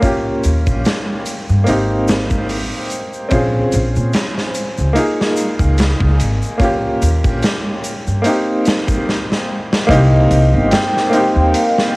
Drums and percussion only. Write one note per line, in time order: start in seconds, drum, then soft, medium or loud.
0.02 kick loud
0.02 closed hi-hat medium
0.02 shaker soft
0.44 closed hi-hat medium
0.44 shaker medium
0.66 kick medium
0.66 shaker soft
0.85 snare loud
0.85 closed hi-hat medium
0.85 shaker soft
1.26 closed hi-hat medium
1.26 shaker medium
1.49 shaker soft
1.67 closed hi-hat medium
1.67 shaker soft
2.08 snare loud
2.08 closed hi-hat medium
2.08 shaker medium
2.30 kick medium
2.30 shaker soft
2.49 open hi-hat medium
2.49 shaker soft
2.90 closed hi-hat medium
2.90 shaker medium
3.13 shaker soft
3.31 kick loud
3.31 closed hi-hat medium
3.31 shaker soft
3.72 closed hi-hat medium
3.72 shaker medium
3.96 shaker soft
4.13 snare loud
4.13 closed hi-hat medium
4.13 shaker soft
4.38 snare soft
4.54 closed hi-hat medium
4.54 shaker medium
4.77 shaker soft
4.95 closed hi-hat medium
4.95 shaker soft
5.21 snare medium
5.36 closed hi-hat medium
5.36 shaker medium
5.59 kick medium
5.59 shaker soft
5.77 snare loud
5.77 closed hi-hat medium
5.77 shaker soft
6.00 kick medium
6.20 closed hi-hat medium
6.20 shaker medium
6.42 shaker soft
6.60 kick loud
6.60 closed hi-hat medium
6.60 shaker soft
7.02 closed hi-hat medium
7.02 shaker medium
7.24 kick medium
7.24 shaker soft
7.42 snare loud
7.42 closed hi-hat medium
7.42 shaker soft
7.84 closed hi-hat medium
7.84 shaker medium
8.07 shaker soft
8.24 closed hi-hat medium
8.24 shaker soft
8.65 snare loud
8.65 closed hi-hat medium
8.65 shaker medium
8.88 kick medium
8.88 shaker soft
9.09 snare medium
9.32 snare medium
9.73 snare medium
9.89 kick loud
9.89 closed hi-hat loud
10.31 closed hi-hat medium
10.71 snare loud
10.71 closed hi-hat medium
10.97 snare soft
11.13 closed hi-hat medium
11.54 closed hi-hat loud
11.78 snare medium